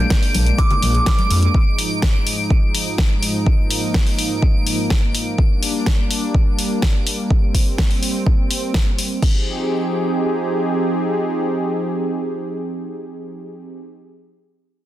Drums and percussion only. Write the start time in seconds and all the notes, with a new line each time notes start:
0.10 kick, snare, closed hi-hat
0.22 open hi-hat
0.34 open hi-hat, high conga
0.46 closed hi-hat
0.58 kick, closed hi-hat
0.71 closed hi-hat, low conga
0.82 open hi-hat, high conga
0.95 closed hi-hat
1.06 kick, snare, closed hi-hat
1.19 closed hi-hat, high conga
1.30 open hi-hat
1.43 closed hi-hat
1.54 kick
1.79 open hi-hat
2.02 kick, snare
2.27 open hi-hat
2.50 kick
2.75 open hi-hat
2.98 kick, snare
3.23 open hi-hat
3.46 kick
3.70 open hi-hat
3.94 kick, snare
4.07 open hi-hat
4.19 open hi-hat
4.42 kick
4.67 open hi-hat
4.90 kick, snare
5.15 open hi-hat
5.38 kick
5.63 open hi-hat
5.86 kick, snare
6.11 open hi-hat
6.35 kick
6.59 open hi-hat
6.82 kick, snare
7.07 open hi-hat
7.31 kick
7.54 kick, open hi-hat
7.78 kick, snare
7.91 open hi-hat
8.03 open hi-hat
8.27 kick
8.51 open hi-hat
8.74 kick, snare
8.98 open hi-hat
9.22 kick, crash